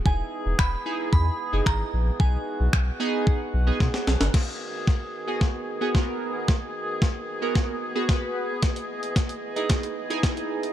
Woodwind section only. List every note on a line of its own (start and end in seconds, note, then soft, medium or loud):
0.05 4.30 E3 medium
0.05 4.30 G#3 medium
0.05 4.30 B3 medium
0.05 2.18 G#4 medium
2.20 4.32 F#4 medium
4.34 8.46 D#3 medium
4.34 10.73 B3 medium
4.34 8.46 F#4 medium
4.34 10.73 G#4 medium
8.63 10.73 E3 medium
8.63 10.73 D#5 medium